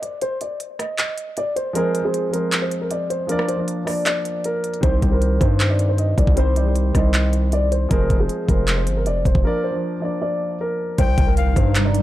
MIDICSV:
0, 0, Header, 1, 8, 480
1, 0, Start_track
1, 0, Key_signature, -3, "minor"
1, 0, Tempo, 384615
1, 270, Time_signature, 4, 2, 24, 8
1, 15005, End_track
2, 0, Start_track
2, 0, Title_t, "Flute"
2, 0, Program_c, 0, 73
2, 13711, Note_on_c, 0, 79, 113
2, 14162, Note_off_c, 0, 79, 0
2, 14192, Note_on_c, 0, 77, 83
2, 14642, Note_off_c, 0, 77, 0
2, 15005, End_track
3, 0, Start_track
3, 0, Title_t, "Grand piano"
3, 0, Program_c, 1, 0
3, 25, Note_on_c, 1, 74, 65
3, 208, Note_off_c, 1, 74, 0
3, 273, Note_on_c, 1, 72, 97
3, 453, Note_off_c, 1, 72, 0
3, 516, Note_on_c, 1, 74, 75
3, 695, Note_off_c, 1, 74, 0
3, 991, Note_on_c, 1, 75, 80
3, 1171, Note_off_c, 1, 75, 0
3, 1234, Note_on_c, 1, 75, 68
3, 1683, Note_off_c, 1, 75, 0
3, 1717, Note_on_c, 1, 74, 88
3, 1896, Note_off_c, 1, 74, 0
3, 1948, Note_on_c, 1, 72, 85
3, 2130, Note_off_c, 1, 72, 0
3, 2190, Note_on_c, 1, 70, 105
3, 2529, Note_off_c, 1, 70, 0
3, 2556, Note_on_c, 1, 68, 80
3, 2892, Note_off_c, 1, 68, 0
3, 2904, Note_on_c, 1, 70, 89
3, 3245, Note_off_c, 1, 70, 0
3, 3270, Note_on_c, 1, 72, 72
3, 3451, Note_off_c, 1, 72, 0
3, 3512, Note_on_c, 1, 70, 73
3, 3601, Note_off_c, 1, 70, 0
3, 3634, Note_on_c, 1, 74, 79
3, 3814, Note_off_c, 1, 74, 0
3, 3869, Note_on_c, 1, 72, 79
3, 4051, Note_off_c, 1, 72, 0
3, 4107, Note_on_c, 1, 70, 92
3, 4289, Note_off_c, 1, 70, 0
3, 4346, Note_on_c, 1, 72, 78
3, 4528, Note_off_c, 1, 72, 0
3, 4825, Note_on_c, 1, 74, 79
3, 5008, Note_off_c, 1, 74, 0
3, 5066, Note_on_c, 1, 74, 82
3, 5519, Note_off_c, 1, 74, 0
3, 5558, Note_on_c, 1, 70, 87
3, 6006, Note_off_c, 1, 70, 0
3, 6033, Note_on_c, 1, 72, 99
3, 6370, Note_off_c, 1, 72, 0
3, 6387, Note_on_c, 1, 70, 83
3, 6727, Note_off_c, 1, 70, 0
3, 6749, Note_on_c, 1, 72, 81
3, 7088, Note_off_c, 1, 72, 0
3, 7113, Note_on_c, 1, 74, 77
3, 7293, Note_off_c, 1, 74, 0
3, 7350, Note_on_c, 1, 72, 78
3, 7440, Note_off_c, 1, 72, 0
3, 7470, Note_on_c, 1, 75, 77
3, 7651, Note_off_c, 1, 75, 0
3, 7708, Note_on_c, 1, 74, 69
3, 7890, Note_off_c, 1, 74, 0
3, 7956, Note_on_c, 1, 72, 98
3, 8134, Note_off_c, 1, 72, 0
3, 8200, Note_on_c, 1, 74, 74
3, 8377, Note_off_c, 1, 74, 0
3, 8674, Note_on_c, 1, 75, 79
3, 8854, Note_off_c, 1, 75, 0
3, 8915, Note_on_c, 1, 75, 70
3, 9364, Note_off_c, 1, 75, 0
3, 9398, Note_on_c, 1, 74, 88
3, 9576, Note_off_c, 1, 74, 0
3, 9630, Note_on_c, 1, 72, 83
3, 9811, Note_off_c, 1, 72, 0
3, 9870, Note_on_c, 1, 70, 106
3, 10209, Note_off_c, 1, 70, 0
3, 10237, Note_on_c, 1, 68, 81
3, 10572, Note_off_c, 1, 68, 0
3, 10585, Note_on_c, 1, 70, 88
3, 10926, Note_off_c, 1, 70, 0
3, 10949, Note_on_c, 1, 72, 72
3, 11130, Note_off_c, 1, 72, 0
3, 11193, Note_on_c, 1, 70, 75
3, 11282, Note_off_c, 1, 70, 0
3, 11315, Note_on_c, 1, 74, 84
3, 11494, Note_off_c, 1, 74, 0
3, 11552, Note_on_c, 1, 72, 82
3, 11732, Note_off_c, 1, 72, 0
3, 11788, Note_on_c, 1, 70, 96
3, 11970, Note_off_c, 1, 70, 0
3, 12027, Note_on_c, 1, 72, 79
3, 12209, Note_off_c, 1, 72, 0
3, 12507, Note_on_c, 1, 74, 77
3, 12689, Note_off_c, 1, 74, 0
3, 12750, Note_on_c, 1, 74, 81
3, 13201, Note_off_c, 1, 74, 0
3, 13238, Note_on_c, 1, 70, 89
3, 13686, Note_off_c, 1, 70, 0
3, 13713, Note_on_c, 1, 72, 104
3, 14050, Note_off_c, 1, 72, 0
3, 14066, Note_on_c, 1, 70, 83
3, 14406, Note_off_c, 1, 70, 0
3, 14430, Note_on_c, 1, 72, 85
3, 14768, Note_off_c, 1, 72, 0
3, 14793, Note_on_c, 1, 74, 79
3, 14973, Note_off_c, 1, 74, 0
3, 15005, End_track
4, 0, Start_track
4, 0, Title_t, "Grand piano"
4, 0, Program_c, 2, 0
4, 2161, Note_on_c, 2, 53, 101
4, 2176, Note_on_c, 2, 56, 89
4, 2190, Note_on_c, 2, 60, 88
4, 2206, Note_on_c, 2, 68, 89
4, 2220, Note_on_c, 2, 72, 99
4, 2422, Note_off_c, 2, 53, 0
4, 2429, Note_off_c, 2, 56, 0
4, 2435, Control_c, 2, 64, 127
4, 2436, Note_off_c, 2, 60, 0
4, 2444, Note_off_c, 2, 68, 0
4, 2451, Note_off_c, 2, 72, 0
4, 2523, Note_on_c, 2, 53, 78
4, 2537, Note_on_c, 2, 56, 66
4, 2552, Note_on_c, 2, 60, 71
4, 2567, Note_on_c, 2, 68, 66
4, 2582, Note_on_c, 2, 72, 88
4, 2782, Note_off_c, 2, 53, 0
4, 2790, Note_off_c, 2, 56, 0
4, 2797, Note_off_c, 2, 60, 0
4, 2805, Note_off_c, 2, 68, 0
4, 2812, Note_off_c, 2, 72, 0
4, 2882, Note_on_c, 2, 53, 78
4, 2896, Note_on_c, 2, 56, 66
4, 2910, Note_on_c, 2, 60, 69
4, 2926, Note_on_c, 2, 68, 72
4, 2940, Note_on_c, 2, 72, 90
4, 3552, Note_off_c, 2, 53, 0
4, 3560, Note_off_c, 2, 56, 0
4, 3567, Note_off_c, 2, 60, 0
4, 3574, Note_off_c, 2, 68, 0
4, 3582, Note_off_c, 2, 72, 0
4, 4081, Note_on_c, 2, 53, 87
4, 4095, Note_on_c, 2, 58, 85
4, 4110, Note_on_c, 2, 62, 87
4, 4125, Note_on_c, 2, 70, 88
4, 4126, Control_c, 2, 64, 0
4, 4139, Note_on_c, 2, 74, 110
4, 4342, Note_off_c, 2, 53, 0
4, 4349, Note_off_c, 2, 58, 0
4, 4356, Note_off_c, 2, 62, 0
4, 4364, Note_off_c, 2, 70, 0
4, 4371, Note_off_c, 2, 74, 0
4, 4374, Control_c, 2, 64, 127
4, 4439, Note_on_c, 2, 53, 78
4, 4455, Note_on_c, 2, 58, 70
4, 4470, Note_on_c, 2, 62, 73
4, 4485, Note_on_c, 2, 70, 66
4, 4499, Note_on_c, 2, 74, 82
4, 4701, Note_off_c, 2, 53, 0
4, 4709, Note_off_c, 2, 58, 0
4, 4716, Note_off_c, 2, 62, 0
4, 4723, Note_off_c, 2, 70, 0
4, 4731, Note_off_c, 2, 74, 0
4, 4801, Note_on_c, 2, 53, 80
4, 4815, Note_on_c, 2, 58, 68
4, 4830, Note_on_c, 2, 62, 66
4, 4845, Note_on_c, 2, 70, 70
4, 4860, Note_on_c, 2, 74, 82
4, 5472, Note_off_c, 2, 53, 0
4, 5479, Note_off_c, 2, 58, 0
4, 5486, Note_off_c, 2, 62, 0
4, 5494, Note_off_c, 2, 70, 0
4, 5501, Note_off_c, 2, 74, 0
4, 5999, Note_on_c, 2, 51, 105
4, 6014, Note_on_c, 2, 55, 86
4, 6029, Note_on_c, 2, 60, 86
4, 6043, Note_on_c, 2, 67, 93
4, 6048, Control_c, 2, 64, 0
4, 6058, Note_on_c, 2, 72, 101
4, 6243, Control_c, 2, 64, 127
4, 6261, Note_off_c, 2, 51, 0
4, 6268, Note_off_c, 2, 55, 0
4, 6276, Note_off_c, 2, 60, 0
4, 6283, Note_off_c, 2, 67, 0
4, 6290, Note_off_c, 2, 72, 0
4, 6361, Note_on_c, 2, 51, 80
4, 6375, Note_on_c, 2, 55, 66
4, 6391, Note_on_c, 2, 60, 69
4, 6405, Note_on_c, 2, 67, 66
4, 6420, Note_on_c, 2, 72, 84
4, 6622, Note_off_c, 2, 51, 0
4, 6629, Note_off_c, 2, 55, 0
4, 6636, Note_off_c, 2, 60, 0
4, 6644, Note_off_c, 2, 67, 0
4, 6651, Note_off_c, 2, 72, 0
4, 6721, Note_on_c, 2, 51, 80
4, 6736, Note_on_c, 2, 55, 73
4, 6750, Note_on_c, 2, 60, 77
4, 6765, Note_on_c, 2, 67, 69
4, 6780, Note_on_c, 2, 72, 94
4, 7392, Note_off_c, 2, 51, 0
4, 7399, Note_off_c, 2, 55, 0
4, 7407, Note_off_c, 2, 60, 0
4, 7414, Note_off_c, 2, 67, 0
4, 7421, Note_off_c, 2, 72, 0
4, 7918, Note_on_c, 2, 51, 92
4, 7933, Note_on_c, 2, 55, 88
4, 7948, Note_on_c, 2, 60, 91
4, 7962, Note_on_c, 2, 67, 87
4, 7977, Note_on_c, 2, 72, 108
4, 8180, Note_off_c, 2, 51, 0
4, 8188, Note_off_c, 2, 55, 0
4, 8195, Note_off_c, 2, 60, 0
4, 8202, Note_off_c, 2, 67, 0
4, 8210, Note_off_c, 2, 72, 0
4, 8282, Note_on_c, 2, 51, 76
4, 8296, Note_on_c, 2, 55, 71
4, 8311, Note_on_c, 2, 60, 70
4, 8326, Note_on_c, 2, 67, 71
4, 8341, Note_on_c, 2, 72, 88
4, 8542, Note_off_c, 2, 51, 0
4, 8549, Note_off_c, 2, 55, 0
4, 8557, Note_off_c, 2, 60, 0
4, 8564, Note_off_c, 2, 67, 0
4, 8572, Note_off_c, 2, 72, 0
4, 8640, Note_on_c, 2, 51, 81
4, 8655, Note_on_c, 2, 55, 74
4, 8670, Note_on_c, 2, 60, 70
4, 8685, Note_on_c, 2, 67, 72
4, 8700, Note_on_c, 2, 72, 91
4, 9311, Note_off_c, 2, 51, 0
4, 9319, Note_off_c, 2, 55, 0
4, 9327, Note_off_c, 2, 60, 0
4, 9334, Note_off_c, 2, 67, 0
4, 9342, Note_off_c, 2, 72, 0
4, 9842, Note_on_c, 2, 53, 98
4, 9856, Note_on_c, 2, 56, 86
4, 9871, Note_on_c, 2, 60, 86
4, 9885, Control_c, 2, 64, 0
4, 9886, Note_on_c, 2, 68, 93
4, 9901, Note_on_c, 2, 72, 103
4, 10091, Control_c, 2, 64, 127
4, 10102, Note_off_c, 2, 53, 0
4, 10109, Note_off_c, 2, 56, 0
4, 10117, Note_off_c, 2, 60, 0
4, 10124, Note_off_c, 2, 68, 0
4, 10132, Note_off_c, 2, 72, 0
4, 10203, Note_on_c, 2, 53, 79
4, 10217, Note_on_c, 2, 56, 68
4, 10232, Note_on_c, 2, 60, 73
4, 10247, Note_on_c, 2, 68, 68
4, 10262, Note_on_c, 2, 72, 88
4, 10462, Note_off_c, 2, 53, 0
4, 10470, Note_off_c, 2, 56, 0
4, 10477, Note_off_c, 2, 60, 0
4, 10485, Note_off_c, 2, 68, 0
4, 10492, Note_off_c, 2, 72, 0
4, 10562, Note_on_c, 2, 53, 81
4, 10576, Note_on_c, 2, 56, 69
4, 10591, Note_on_c, 2, 60, 68
4, 10606, Note_on_c, 2, 68, 75
4, 10620, Note_on_c, 2, 72, 95
4, 11232, Note_off_c, 2, 53, 0
4, 11239, Note_off_c, 2, 56, 0
4, 11247, Note_off_c, 2, 60, 0
4, 11254, Note_off_c, 2, 68, 0
4, 11262, Note_off_c, 2, 72, 0
4, 11760, Note_on_c, 2, 53, 85
4, 11775, Note_on_c, 2, 58, 86
4, 11789, Note_on_c, 2, 62, 89
4, 11804, Note_on_c, 2, 70, 89
4, 11805, Control_c, 2, 64, 0
4, 11818, Note_on_c, 2, 74, 117
4, 12003, Control_c, 2, 64, 127
4, 12021, Note_off_c, 2, 53, 0
4, 12029, Note_off_c, 2, 58, 0
4, 12036, Note_off_c, 2, 62, 0
4, 12043, Note_off_c, 2, 70, 0
4, 12050, Note_off_c, 2, 74, 0
4, 12121, Note_on_c, 2, 53, 83
4, 12136, Note_on_c, 2, 58, 70
4, 12151, Note_on_c, 2, 62, 76
4, 12166, Note_on_c, 2, 70, 65
4, 12180, Note_on_c, 2, 74, 82
4, 12382, Note_off_c, 2, 53, 0
4, 12389, Note_off_c, 2, 58, 0
4, 12397, Note_off_c, 2, 62, 0
4, 12404, Note_off_c, 2, 70, 0
4, 12411, Note_off_c, 2, 74, 0
4, 12482, Note_on_c, 2, 53, 78
4, 12496, Note_on_c, 2, 58, 71
4, 12511, Note_on_c, 2, 62, 68
4, 12526, Note_on_c, 2, 70, 71
4, 12540, Note_on_c, 2, 74, 85
4, 13152, Note_off_c, 2, 53, 0
4, 13159, Note_off_c, 2, 58, 0
4, 13167, Note_off_c, 2, 62, 0
4, 13174, Note_off_c, 2, 70, 0
4, 13182, Note_off_c, 2, 74, 0
4, 13728, Control_c, 2, 64, 0
4, 15005, End_track
5, 0, Start_track
5, 0, Title_t, "Ambient pad"
5, 0, Program_c, 3, 92
5, 13709, Note_on_c, 3, 48, 81
5, 13709, Note_on_c, 3, 63, 90
5, 13710, Note_on_c, 3, 55, 76
5, 15005, Note_off_c, 3, 48, 0
5, 15005, Note_off_c, 3, 55, 0
5, 15005, Note_off_c, 3, 63, 0
5, 15005, End_track
6, 0, Start_track
6, 0, Title_t, "808-style bass"
6, 0, Program_c, 4, 38
6, 6030, Note_on_c, 4, 36, 113
6, 6260, Note_off_c, 4, 36, 0
6, 6269, Note_on_c, 4, 36, 104
6, 6731, Note_off_c, 4, 36, 0
6, 6750, Note_on_c, 4, 43, 104
6, 7671, Note_off_c, 4, 43, 0
6, 7709, Note_on_c, 4, 36, 103
6, 7822, Note_off_c, 4, 36, 0
6, 7829, Note_on_c, 4, 36, 100
6, 8636, Note_off_c, 4, 36, 0
6, 8670, Note_on_c, 4, 36, 104
6, 9822, Note_off_c, 4, 36, 0
6, 9870, Note_on_c, 4, 29, 112
6, 10101, Note_off_c, 4, 29, 0
6, 10110, Note_on_c, 4, 29, 102
6, 10341, Note_off_c, 4, 29, 0
6, 10590, Note_on_c, 4, 29, 109
6, 11070, Note_on_c, 4, 31, 95
6, 11089, Note_off_c, 4, 29, 0
6, 11310, Note_on_c, 4, 29, 96
6, 11329, Note_off_c, 4, 31, 0
6, 11538, Note_off_c, 4, 29, 0
6, 11549, Note_on_c, 4, 27, 105
6, 11662, Note_off_c, 4, 27, 0
6, 11669, Note_on_c, 4, 29, 105
6, 11785, Note_off_c, 4, 29, 0
6, 13710, Note_on_c, 4, 36, 112
6, 13940, Note_off_c, 4, 36, 0
6, 13950, Note_on_c, 4, 36, 105
6, 14411, Note_off_c, 4, 36, 0
6, 14430, Note_on_c, 4, 43, 107
6, 15005, Note_off_c, 4, 43, 0
6, 15005, End_track
7, 0, Start_track
7, 0, Title_t, "Impact"
7, 0, Program_c, 5, 103
7, 13710, Note_on_c, 5, 60, 87
7, 15005, Note_off_c, 5, 60, 0
7, 15005, End_track
8, 0, Start_track
8, 0, Title_t, "Drums"
8, 34, Note_on_c, 9, 42, 72
8, 159, Note_off_c, 9, 42, 0
8, 268, Note_on_c, 9, 42, 82
8, 393, Note_off_c, 9, 42, 0
8, 509, Note_on_c, 9, 42, 73
8, 634, Note_off_c, 9, 42, 0
8, 750, Note_on_c, 9, 42, 74
8, 874, Note_off_c, 9, 42, 0
8, 990, Note_on_c, 9, 37, 67
8, 994, Note_on_c, 9, 42, 78
8, 1114, Note_off_c, 9, 37, 0
8, 1119, Note_off_c, 9, 42, 0
8, 1228, Note_on_c, 9, 42, 99
8, 1229, Note_on_c, 9, 39, 116
8, 1353, Note_off_c, 9, 42, 0
8, 1354, Note_off_c, 9, 39, 0
8, 1467, Note_on_c, 9, 42, 76
8, 1592, Note_off_c, 9, 42, 0
8, 1707, Note_on_c, 9, 42, 80
8, 1831, Note_off_c, 9, 42, 0
8, 1954, Note_on_c, 9, 42, 71
8, 2079, Note_off_c, 9, 42, 0
8, 2188, Note_on_c, 9, 42, 86
8, 2313, Note_off_c, 9, 42, 0
8, 2430, Note_on_c, 9, 42, 75
8, 2555, Note_off_c, 9, 42, 0
8, 2671, Note_on_c, 9, 42, 77
8, 2796, Note_off_c, 9, 42, 0
8, 2915, Note_on_c, 9, 42, 81
8, 3040, Note_off_c, 9, 42, 0
8, 3148, Note_on_c, 9, 42, 98
8, 3150, Note_on_c, 9, 39, 116
8, 3273, Note_off_c, 9, 42, 0
8, 3274, Note_off_c, 9, 39, 0
8, 3388, Note_on_c, 9, 42, 76
8, 3512, Note_off_c, 9, 42, 0
8, 3627, Note_on_c, 9, 42, 79
8, 3752, Note_off_c, 9, 42, 0
8, 3874, Note_on_c, 9, 42, 69
8, 3999, Note_off_c, 9, 42, 0
8, 4108, Note_on_c, 9, 42, 87
8, 4231, Note_on_c, 9, 37, 95
8, 4233, Note_off_c, 9, 42, 0
8, 4350, Note_on_c, 9, 42, 76
8, 4356, Note_off_c, 9, 37, 0
8, 4475, Note_off_c, 9, 42, 0
8, 4591, Note_on_c, 9, 42, 77
8, 4716, Note_off_c, 9, 42, 0
8, 4830, Note_on_c, 9, 37, 64
8, 4835, Note_on_c, 9, 46, 56
8, 4955, Note_off_c, 9, 37, 0
8, 4959, Note_off_c, 9, 46, 0
8, 5068, Note_on_c, 9, 42, 96
8, 5069, Note_on_c, 9, 39, 117
8, 5193, Note_off_c, 9, 42, 0
8, 5194, Note_off_c, 9, 39, 0
8, 5307, Note_on_c, 9, 42, 78
8, 5432, Note_off_c, 9, 42, 0
8, 5546, Note_on_c, 9, 42, 79
8, 5671, Note_off_c, 9, 42, 0
8, 5789, Note_on_c, 9, 42, 71
8, 5910, Note_off_c, 9, 42, 0
8, 5910, Note_on_c, 9, 42, 42
8, 6028, Note_off_c, 9, 42, 0
8, 6028, Note_on_c, 9, 42, 82
8, 6030, Note_on_c, 9, 36, 109
8, 6153, Note_off_c, 9, 42, 0
8, 6155, Note_off_c, 9, 36, 0
8, 6270, Note_on_c, 9, 36, 96
8, 6270, Note_on_c, 9, 42, 74
8, 6395, Note_off_c, 9, 36, 0
8, 6395, Note_off_c, 9, 42, 0
8, 6511, Note_on_c, 9, 42, 77
8, 6635, Note_off_c, 9, 42, 0
8, 6750, Note_on_c, 9, 36, 94
8, 6755, Note_on_c, 9, 42, 78
8, 6874, Note_off_c, 9, 36, 0
8, 6879, Note_off_c, 9, 42, 0
8, 6989, Note_on_c, 9, 42, 97
8, 6990, Note_on_c, 9, 39, 118
8, 7114, Note_off_c, 9, 42, 0
8, 7115, Note_off_c, 9, 39, 0
8, 7228, Note_on_c, 9, 42, 80
8, 7352, Note_off_c, 9, 42, 0
8, 7467, Note_on_c, 9, 42, 80
8, 7592, Note_off_c, 9, 42, 0
8, 7709, Note_on_c, 9, 36, 94
8, 7715, Note_on_c, 9, 42, 71
8, 7829, Note_off_c, 9, 36, 0
8, 7829, Note_on_c, 9, 36, 94
8, 7839, Note_off_c, 9, 42, 0
8, 7949, Note_on_c, 9, 42, 85
8, 7954, Note_off_c, 9, 36, 0
8, 8073, Note_off_c, 9, 42, 0
8, 8190, Note_on_c, 9, 42, 76
8, 8315, Note_off_c, 9, 42, 0
8, 8431, Note_on_c, 9, 42, 76
8, 8555, Note_off_c, 9, 42, 0
8, 8670, Note_on_c, 9, 36, 90
8, 8670, Note_on_c, 9, 37, 65
8, 8675, Note_on_c, 9, 42, 80
8, 8795, Note_off_c, 9, 36, 0
8, 8795, Note_off_c, 9, 37, 0
8, 8799, Note_off_c, 9, 42, 0
8, 8909, Note_on_c, 9, 42, 93
8, 8910, Note_on_c, 9, 39, 118
8, 9034, Note_off_c, 9, 42, 0
8, 9035, Note_off_c, 9, 39, 0
8, 9148, Note_on_c, 9, 42, 75
8, 9273, Note_off_c, 9, 42, 0
8, 9387, Note_on_c, 9, 42, 77
8, 9512, Note_off_c, 9, 42, 0
8, 9634, Note_on_c, 9, 42, 71
8, 9759, Note_off_c, 9, 42, 0
8, 9869, Note_on_c, 9, 42, 85
8, 9870, Note_on_c, 9, 36, 112
8, 9993, Note_off_c, 9, 42, 0
8, 9995, Note_off_c, 9, 36, 0
8, 10110, Note_on_c, 9, 36, 97
8, 10110, Note_on_c, 9, 42, 75
8, 10234, Note_off_c, 9, 42, 0
8, 10235, Note_off_c, 9, 36, 0
8, 10351, Note_on_c, 9, 42, 75
8, 10475, Note_off_c, 9, 42, 0
8, 10590, Note_on_c, 9, 36, 93
8, 10594, Note_on_c, 9, 42, 83
8, 10715, Note_off_c, 9, 36, 0
8, 10719, Note_off_c, 9, 42, 0
8, 10828, Note_on_c, 9, 42, 95
8, 10829, Note_on_c, 9, 39, 119
8, 10953, Note_off_c, 9, 42, 0
8, 10954, Note_off_c, 9, 39, 0
8, 11067, Note_on_c, 9, 42, 78
8, 11192, Note_off_c, 9, 42, 0
8, 11307, Note_on_c, 9, 42, 80
8, 11431, Note_off_c, 9, 42, 0
8, 11549, Note_on_c, 9, 36, 91
8, 11554, Note_on_c, 9, 42, 69
8, 11669, Note_off_c, 9, 36, 0
8, 11669, Note_on_c, 9, 36, 93
8, 11679, Note_off_c, 9, 42, 0
8, 11794, Note_off_c, 9, 36, 0
8, 13708, Note_on_c, 9, 42, 87
8, 13710, Note_on_c, 9, 36, 115
8, 13833, Note_off_c, 9, 42, 0
8, 13835, Note_off_c, 9, 36, 0
8, 13950, Note_on_c, 9, 36, 102
8, 13950, Note_on_c, 9, 42, 76
8, 14075, Note_off_c, 9, 36, 0
8, 14075, Note_off_c, 9, 42, 0
8, 14190, Note_on_c, 9, 42, 76
8, 14315, Note_off_c, 9, 42, 0
8, 14430, Note_on_c, 9, 36, 95
8, 14435, Note_on_c, 9, 42, 83
8, 14554, Note_off_c, 9, 36, 0
8, 14559, Note_off_c, 9, 42, 0
8, 14668, Note_on_c, 9, 42, 99
8, 14669, Note_on_c, 9, 39, 126
8, 14793, Note_off_c, 9, 42, 0
8, 14794, Note_off_c, 9, 39, 0
8, 14907, Note_on_c, 9, 42, 82
8, 15005, Note_off_c, 9, 42, 0
8, 15005, End_track
0, 0, End_of_file